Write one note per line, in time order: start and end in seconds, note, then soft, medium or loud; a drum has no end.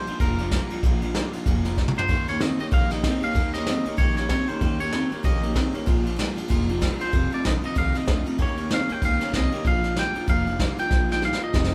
0.00 0.17 C5 loud
0.07 0.20 A#2 medium
0.07 0.20 F3 medium
0.07 0.20 G#3 soft
0.07 0.21 D4 soft
0.07 0.20 F4 soft
0.07 muted upright bass stroke medium
0.07 ride medium
0.20 0.55 F1 medium
0.20 0.39 A#2 medium
0.20 0.38 A#2 medium
0.20 0.39 F3 medium
0.20 0.38 F3 medium
0.20 0.39 G#3 medium
0.20 0.39 D4 medium
0.20 0.37 F4 loud
0.20 0.80 A#4 medium
0.20 kick loud
0.20 ride medium
0.38 0.51 A#2 medium
0.38 0.51 F3 medium
0.38 0.52 G#3 soft
0.38 0.52 D4 medium
0.38 0.52 F4 medium
0.38 ride medium
0.51 0.69 A#2 medium
0.51 0.70 F3 medium
0.51 0.70 G3 medium
0.51 0.71 G#3 medium
0.51 0.71 D4 medium
0.51 0.70 F4 medium
0.51 kick medium
0.51 snare loud
0.51 ride loud
0.70 0.83 A#2 medium
0.70 0.83 F3 medium
0.70 0.84 G#3 medium
0.70 0.84 D4 medium
0.70 0.84 F4 medium
0.70 muted upright bass stroke medium
0.70 ride medium
0.83 1.18 A#1 medium
0.83 1.02 A#2 loud
0.83 1.00 A#2 loud
0.83 1.01 F3 loud
0.83 1.03 F3 medium
0.83 1.03 G#3 medium
0.83 1.02 D4 loud
0.83 1.00 F4 loud
0.83 kick loud
0.83 ride medium
1.02 1.14 A#2 medium
1.02 1.14 F3 medium
1.02 1.15 G#3 medium
1.02 1.15 D4 medium
1.02 1.15 F4 medium
1.02 ride medium
1.15 1.32 A#2 medium
1.15 1.33 F3 medium
1.15 1.32 G3 medium
1.15 1.34 G#3 medium
1.15 1.34 D4 medium
1.15 1.32 F4 medium
1.15 snare loud
1.15 ride medium
1.33 1.45 A#2 medium
1.33 1.46 F3 medium
1.33 1.46 G#3 soft
1.33 1.46 D4 soft
1.33 1.46 F4 medium
1.33 muted upright bass stroke medium
1.33 ride medium
1.46 1.81 F1 medium
1.46 1.65 A#2 medium
1.46 1.63 A#2 medium
1.46 1.65 F3 loud
1.46 1.63 F3 loud
1.46 1.65 G#3 loud
1.46 1.64 D4 loud
1.46 1.63 F4 loud
1.46 kick loud
1.46 ride medium
1.64 1.77 A#2 medium
1.64 1.77 F3 medium
1.64 1.76 G#3 soft
1.64 1.77 D4 medium
1.64 1.77 F4 medium
1.64 snare soft
1.64 ride medium
1.76 1.95 A#2 medium
1.76 1.96 F3 medium
1.76 1.95 G3 medium
1.76 1.96 G#3 medium
1.76 1.96 D4 medium
1.76 1.94 F4 medium
1.76 kick medium
1.76 snare medium
1.88 mid tom medium
1.95 2.08 A#2 medium
1.95 2.08 F3 medium
1.95 2.08 G#3 soft
1.95 2.08 D4 medium
1.95 2.09 F4 medium
1.95 2.29 C5 medium
1.95 muted upright bass stroke medium
1.95 floor tom loud
2.08 2.44 D#2 medium
2.08 2.27 D#3 medium
2.08 2.26 D#3 medium
2.08 2.27 A#3 medium
2.08 2.26 A#3 medium
2.08 2.27 C#4 medium
2.08 2.25 G4 medium
2.08 kick loud
2.08 snare soft
2.08 ride medium
2.26 2.40 D#3 medium
2.26 2.40 A#3 medium
2.26 2.40 A#3 soft
2.26 2.40 C#4 medium
2.26 2.40 G4 medium
2.26 2.42 C#5 medium
2.26 snare soft
2.26 ride medium
2.40 2.59 D#3 medium
2.40 2.58 D#3 medium
2.40 2.60 A#3 medium
2.40 2.58 C4 medium
2.40 2.59 C#4 medium
2.40 2.57 G4 medium
2.40 2.60 D#5 medium
2.40 snare loud
2.40 ride medium
2.59 2.71 D#3 medium
2.59 2.72 A#3 medium
2.59 2.71 A#3 soft
2.59 2.71 C#4 soft
2.59 2.72 G4 medium
2.59 2.66 D#5 loud
2.59 muted upright bass stroke medium
2.59 ride medium
2.71 3.07 A#1 medium
2.71 2.90 D#3 medium
2.71 2.89 D#3 medium
2.71 2.91 A#3 medium
2.71 2.89 A#3 loud
2.71 2.90 C#4 medium
2.71 2.89 G4 medium
2.71 2.91 F5 loud
2.71 kick loud
2.71 ride medium
2.90 3.03 D#3 medium
2.90 3.03 A#3 medium
2.90 3.02 A#3 soft
2.90 3.03 C#4 medium
2.90 3.03 G4 medium
2.90 3.23 D#5 medium
2.90 snare soft
2.90 ride medium
3.02 3.22 D#3 medium
3.02 3.21 D#3 medium
3.02 3.22 A#3 medium
3.02 3.21 C4 medium
3.02 3.21 C#4 medium
3.02 3.20 G4 medium
3.02 kick medium
3.02 snare loud
3.02 ride medium
3.21 3.34 D#3 medium
3.21 3.33 A#3 soft
3.21 3.35 A#3 medium
3.21 3.34 C#4 medium
3.21 3.34 G4 medium
3.21 3.53 F5 loud
3.21 muted upright bass stroke medium
3.21 ride medium
3.33 3.70 D#2 medium
3.33 3.53 D#3 medium
3.33 3.54 A#3 medium
3.33 3.53 A#3 medium
3.33 3.53 C#4 medium
3.33 3.52 G4 medium
3.33 kick loud
3.33 snare soft
3.33 ride medium
3.53 3.66 D#3 medium
3.53 3.67 A#3 medium
3.53 3.66 A#3 soft
3.53 3.67 C#4 soft
3.53 3.67 G4 medium
3.53 3.98 D#5 loud
3.53 snare soft
3.53 ride medium
3.66 3.85 D#3 medium
3.66 3.84 D#3 medium
3.66 3.86 A#3 medium
3.66 3.84 C4 medium
3.66 3.85 C#4 medium
3.66 3.83 G4 medium
3.66 snare loud
3.66 ride medium
3.85 3.98 D#3 medium
3.85 3.98 A#3 medium
3.85 3.97 A#3 soft
3.85 3.97 C#4 soft
3.85 3.98 G4 medium
3.85 muted upright bass stroke medium
3.85 ride medium
3.97 4.33 A#1 medium
3.97 4.16 D#3 medium
3.97 4.17 A#3 medium
3.97 4.16 A#3 medium
3.97 4.15 C#4 loud
3.97 4.14 G4 medium
3.97 4.16 C#5 loud
3.97 kick loud
3.97 ride medium
4.15 4.29 D#3 medium
4.15 4.29 A#3 soft
4.15 4.29 A#3 medium
4.15 4.30 C#4 medium
4.15 4.29 G4 medium
4.15 4.29 C#5 medium
4.15 snare soft
4.15 ride medium
4.29 4.48 D#3 medium
4.29 4.47 D#3 medium
4.29 4.49 A#3 medium
4.29 4.47 C4 loud
4.29 4.48 C#4 medium
4.29 4.46 G4 medium
4.29 4.48 C#5 medium
4.29 kick medium
4.29 snare loud
4.29 ride medium
4.48 4.60 D#3 medium
4.48 4.61 A#3 medium
4.48 4.60 A#3 medium
4.48 4.61 C#4 medium
4.48 4.61 G4 medium
4.48 4.80 C5 loud
4.48 muted upright bass stroke medium
4.48 ride medium
4.61 4.96 D#2 medium
4.61 4.80 D#3 medium
4.61 4.78 D#3 medium
4.61 4.80 A#3 medium
4.61 4.78 A#3 loud
4.61 4.80 C#4 loud
4.61 4.78 G4 medium
4.61 kick loud
4.61 ride medium
4.79 4.92 D#3 medium
4.79 4.92 A#3 medium
4.79 4.92 A#3 soft
4.79 4.93 C#4 soft
4.79 4.93 G4 medium
4.79 5.22 C#5 medium
4.79 ride medium
4.92 5.11 D#3 medium
4.92 5.10 D#3 medium
4.92 5.12 A#3 medium
4.92 5.10 C4 loud
4.92 5.11 C#4 medium
4.92 5.09 G4 medium
4.92 snare loud
4.92 ride medium
5.10 5.23 D#3 medium
5.10 5.23 A#3 medium
5.10 5.22 A#3 soft
5.10 5.23 C#4 soft
5.10 5.23 G4 medium
5.10 muted upright bass stroke medium
5.10 ride medium
5.23 5.59 A#1 medium
5.23 5.42 D#3 medium
5.23 5.41 D#3 medium
5.23 5.43 A#3 medium
5.23 5.42 A#3 medium
5.23 5.42 C#4 medium
5.23 5.41 G4 loud
5.23 5.84 D#5 medium
5.23 kick loud
5.23 ride medium
5.42 5.54 D#3 medium
5.42 5.55 A#3 medium
5.42 5.54 A#3 soft
5.42 5.55 C#4 soft
5.42 5.55 G4 medium
5.42 ride medium
5.54 5.74 D#3 medium
5.54 5.72 D#3 medium
5.54 5.74 A#3 medium
5.54 5.72 C4 loud
5.54 5.73 C#4 medium
5.54 5.72 G4 medium
5.54 kick medium
5.54 snare loud
5.54 ride medium
5.73 5.86 D#3 medium
5.73 5.86 A#3 medium
5.73 5.87 A#3 medium
5.73 5.87 C#4 medium
5.73 5.87 G4 medium
5.73 muted upright bass stroke medium
5.73 ride medium
5.86 6.22 A#1 medium
5.86 6.05 A#2 loud
5.86 6.04 A#2 medium
5.86 6.06 F3 medium
5.86 6.04 F3 loud
5.86 6.06 G#3 medium
5.86 6.04 D4 medium
5.86 6.03 F4 loud
5.86 kick loud
5.86 ride medium
6.04 6.17 A#2 medium
6.04 6.18 F3 medium
6.04 6.16 G#3 medium
6.04 6.17 D4 soft
6.04 6.18 F4 medium
6.04 ride medium
6.16 6.36 A#2 medium
6.16 6.36 F3 medium
6.16 6.36 G3 loud
6.16 6.37 G#3 medium
6.16 6.36 D4 medium
6.16 6.35 F4 medium
6.16 snare loud
6.16 ride medium
6.36 6.49 A#2 medium
6.36 6.49 F3 medium
6.36 6.48 G#3 soft
6.36 6.49 D4 medium
6.36 6.49 F4 medium
6.36 muted upright bass stroke medium
6.36 ride medium
6.48 6.85 F1 medium
6.48 6.68 A#2 loud
6.48 6.67 A#2 medium
6.48 6.68 F3 loud
6.48 6.68 F3 medium
6.48 6.68 G#3 loud
6.48 6.67 D4 loud
6.48 6.66 F4 loud
6.48 kick loud
6.48 ride medium
6.67 6.81 A#2 medium
6.67 6.81 F3 medium
6.67 6.80 G#3 medium
6.67 6.80 D4 medium
6.67 6.81 F4 medium
6.67 ride medium
6.80 6.99 A#2 medium
6.80 6.99 F3 medium
6.80 6.99 G3 medium
6.80 6.99 G#3 medium
6.80 6.98 D4 medium
6.80 6.97 F4 medium
6.80 kick medium
6.80 snare loud
6.80 ride loud
6.98 7.12 A#2 medium
6.98 7.12 F3 medium
6.98 7.13 G#3 medium
6.98 7.13 D4 medium
6.98 7.12 F4 medium
6.98 7.30 C5 medium
6.98 muted upright bass stroke medium
6.98 ride medium
7.12 7.26 F1 medium
7.12 7.31 F2 medium
7.12 7.30 F2 medium
7.12 7.32 C3 medium
7.12 7.31 C3 loud
7.12 7.32 D#3 medium
7.12 7.31 A3 medium
7.12 7.30 D#4 medium
7.12 7.29 F4 medium
7.12 kick loud
7.12 ride medium
7.30 7.43 F2 medium
7.30 7.44 C3 medium
7.30 7.43 D#3 soft
7.30 7.43 A3 soft
7.30 7.44 D#4 soft
7.30 7.44 F4 medium
7.30 7.46 D5 medium
7.30 muted upright bass stroke medium
7.30 ride medium
7.44 7.61 A#1 medium
7.44 7.62 F2 medium
7.44 7.62 D3 loud
7.44 7.63 D#3 medium
7.44 7.63 A3 medium
7.44 7.62 D#4 medium
7.44 7.61 F4 medium
7.44 7.51 D#5 loud
7.44 snare loud
7.44 ride medium
7.62 7.75 F2 medium
7.62 7.75 C3 medium
7.62 7.75 D#3 soft
7.62 7.75 A3 soft
7.62 7.76 D#4 soft
7.62 7.76 F4 medium
7.62 7.77 D#5 loud
7.62 muted upright bass stroke medium
7.62 ride medium
7.75 7.92 C2 medium
7.75 7.94 F2 medium
7.75 7.93 F2 medium
7.75 7.95 C3 medium
7.75 7.93 C3 loud
7.75 7.95 D#3 medium
7.75 7.94 A3 medium
7.75 7.93 D#4 loud
7.75 7.92 F4 loud
7.75 7.97 F5 loud
7.75 kick loud
7.75 ride medium
7.94 8.06 F2 medium
7.94 8.07 C3 medium
7.94 8.05 D#3 soft
7.94 8.05 A3 soft
7.94 8.07 D#4 medium
7.94 8.07 F4 medium
7.94 8.42 D#5 medium
7.94 muted upright bass stroke medium
7.94 snare soft
7.94 ride medium
8.06 8.23 D2 medium
8.06 8.24 F2 medium
8.06 8.25 D3 medium
8.06 8.25 D#3 medium
8.06 8.25 A3 medium
8.06 8.24 D#4 medium
8.06 8.23 F4 medium
8.06 kick medium
8.06 snare loud
8.06 ride medium
8.25 8.38 F2 medium
8.25 8.38 C3 medium
8.25 8.37 D#3 soft
8.25 8.38 A3 medium
8.25 8.39 D#4 medium
8.25 8.38 F4 medium
8.25 ride medium
8.38 8.74 D#2 medium
8.38 8.58 D#3 medium
8.38 8.56 D#3 medium
8.38 8.58 A#3 medium
8.38 8.56 A#3 loud
8.38 8.57 C#4 medium
8.38 8.55 G4 medium
8.38 8.70 C#5 loud
8.38 kick loud
8.38 ride medium
8.57 8.69 D#3 medium
8.57 8.69 A#3 medium
8.57 8.69 A#3 soft
8.57 8.71 C#4 medium
8.57 8.70 G4 medium
8.57 ride medium
8.70 8.89 D#3 medium
8.70 8.87 D#3 medium
8.70 8.89 A#3 medium
8.70 8.88 C4 loud
8.70 8.90 C#4 medium
8.70 8.88 G4 medium
8.70 snare loud
8.70 ride medium
8.74 8.92 F5 loud
8.88 9.01 D#3 medium
8.88 9.01 A#3 medium
8.88 9.02 A#3 soft
8.88 9.03 C#4 soft
8.88 9.02 G4 medium
8.88 9.04 G5 loud
8.88 muted upright bass stroke medium
8.88 ride medium
9.02 9.18 C#2 medium
9.02 9.19 D#3 medium
9.02 9.21 D#3 medium
9.02 9.19 A#3 medium
9.02 9.21 A#3 medium
9.02 9.21 C#4 loud
9.02 9.20 G4 loud
9.02 9.36 F5 loud
9.02 kick loud
9.02 ride loud
9.20 9.32 D#3 medium
9.20 9.32 A#3 medium
9.20 9.34 A#3 medium
9.20 9.35 C#4 medium
9.20 9.34 G4 medium
9.20 snare soft
9.20 ride medium
9.33 9.49 C2 loud
9.33 9.50 D#3 medium
9.33 9.52 D#3 medium
9.33 9.53 A#3 medium
9.33 9.51 C4 loud
9.33 9.52 C#4 medium
9.33 9.51 G4 medium
9.33 9.67 D#5 loud
9.33 kick medium
9.33 snare loud
9.33 ride loud
9.52 9.64 D#3 medium
9.52 9.64 A#3 medium
9.52 9.66 A#3 medium
9.52 9.66 C#4 medium
9.52 9.65 G4 medium
9.52 ride medium
9.65 10.00 A#1 medium
9.65 9.82 A#2 medium
9.65 9.84 A#2 medium
9.65 9.82 F3 medium
9.65 9.84 F3 medium
9.65 9.84 G#3 medium
9.65 9.83 D4 medium
9.65 9.82 F4 medium
9.65 9.99 F5 loud
9.65 kick loud
9.65 ride medium
9.83 9.95 A#2 medium
9.83 9.96 F3 medium
9.83 9.97 G#3 soft
9.83 9.97 D4 medium
9.83 9.96 F4 medium
9.83 snare soft
9.83 ride medium
9.96 10.13 A#2 medium
9.96 10.15 F3 medium
9.96 10.14 G3 medium
9.96 10.16 G#3 medium
9.96 10.15 D4 medium
9.96 10.13 F4 medium
9.96 10.29 G5 loud
9.96 snare loud
9.96 ride medium
10.14 10.27 A#2 medium
10.14 10.27 F3 medium
10.14 10.28 G#3 soft
10.14 10.28 D4 soft
10.14 10.28 F4 medium
10.14 muted upright bass stroke medium
10.14 ride medium
10.27 10.63 F1 medium
10.27 10.46 A#2 loud
10.27 10.45 A#2 medium
10.27 10.47 F3 medium
10.27 10.45 F3 loud
10.27 10.47 G#3 medium
10.27 10.47 D4 loud
10.27 10.45 F4 medium
10.27 10.79 F5 loud
10.27 kick loud
10.27 ride medium
10.46 10.58 A#2 medium
10.46 10.59 F3 medium
10.46 10.59 G#3 soft
10.46 10.60 D4 medium
10.46 10.60 F4 medium
10.46 ride medium
10.59 10.76 A#2 medium
10.59 10.78 F3 medium
10.59 10.77 G3 loud
10.59 10.79 G#3 medium
10.59 10.78 D4 medium
10.59 10.76 F4 medium
10.59 kick medium
10.59 snare loud
10.59 ride medium
10.78 10.90 A#2 medium
10.78 10.90 F3 medium
10.78 10.91 G#3 medium
10.78 10.91 D4 medium
10.78 10.91 F4 medium
10.78 11.11 G5 loud
10.78 muted upright bass stroke medium
10.78 snare soft
10.78 ride medium
10.91 11.26 A#1 medium
10.91 11.10 A#2 medium
10.91 11.08 A#2 loud
10.91 11.08 F3 loud
10.91 11.10 F3 medium
10.91 11.10 G#3 medium
10.91 11.10 D4 medium
10.91 11.08 F4 loud
10.91 kick loud
10.91 snare medium
11.09 11.21 A#2 medium
11.09 11.21 F3 medium
11.09 11.22 G#3 soft
11.09 11.23 D4 soft
11.09 11.22 F4 medium
11.09 11.24 G5 loud
11.09 snare medium
11.22 11.40 A#2 medium
11.22 11.41 F3 medium
11.22 11.40 G3 medium
11.22 11.41 G#3 medium
11.22 11.40 D4 medium
11.22 11.39 F4 medium
11.22 11.43 F5 medium
11.22 snare medium
11.33 snare medium
11.40 11.53 A#2 medium
11.40 11.53 F3 medium
11.40 11.54 G#3 soft
11.40 11.54 D4 soft
11.40 11.54 F4 medium
11.40 11.75 D#5 medium
11.40 muted upright bass stroke medium
11.53 11.75 F1 loud
11.53 11.72 F2 medium
11.53 11.71 F2 medium
11.53 11.73 C3 medium
11.53 11.71 C3 medium
11.53 11.73 D#3 medium
11.53 11.72 A3 medium
11.53 11.71 D#4 loud
11.53 11.70 F4 medium
11.53 kick loud
11.53 snare medium
11.64 snare medium
11.71 11.75 F4 medium